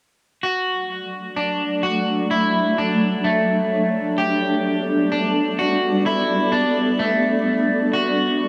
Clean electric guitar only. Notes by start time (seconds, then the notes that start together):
0.43 F#4
1.36 D4
1.83 F#4
2.31 E4
2.78 D4
3.24 A3
4.18 G4
5.12 D4
5.59 F#4
6.06 E4
6.52 D4
6.99 A3
7.93 F#4